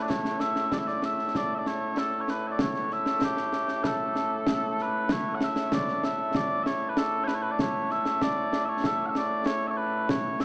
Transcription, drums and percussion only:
0.10 concert bass drum, snare
0.25 snare
0.40 snare
0.56 snare
0.72 concert bass drum, snare
0.87 snare
1.02 snare
1.19 snare
1.35 concert bass drum, snare
1.66 snare
1.97 snare
2.28 snare
2.59 concert bass drum, snare
2.75 snare
2.91 snare
3.06 snare
3.21 concert bass drum, snare
3.37 snare
3.53 snare
3.68 snare
3.84 concert bass drum, snare
4.16 snare
4.47 concert bass drum, snare
4.78 snare
5.09 concert bass drum, snare
5.41 snare
5.56 snare
5.72 concert bass drum, snare
5.88 snare
6.04 snare
6.34 concert bass drum, snare
6.66 snare
6.97 snare
7.28 snare
7.59 concert bass drum, snare
7.90 snare
8.05 snare
8.21 concert bass drum, snare
8.53 snare
8.84 concert bass drum, snare
9.15 snare
9.46 snare
10.09 concert bass drum, snare
10.40 snare

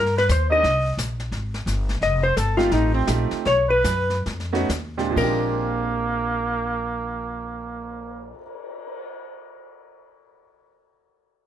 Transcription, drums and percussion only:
0.06 snare
0.18 snare
0.29 snare, hi-hat pedal
0.64 brush sweep, snare
0.98 snare, hi-hat pedal
1.20 snare
1.32 brush sweep, snare
1.54 snare
1.67 snare, hi-hat pedal
1.89 snare
2.02 brush sweep, snare
2.37 snare, hi-hat pedal
2.59 snare
2.71 brush sweep, snare
3.07 snare, hi-hat pedal
3.31 snare
3.45 brush sweep, snare
3.84 snare, hi-hat pedal
4.10 snare
4.26 brush sweep, snare
4.40 snare
4.55 snare
4.70 snare, hi-hat pedal
4.99 snare
5.16 kick, crash
5.47 cymbal swell

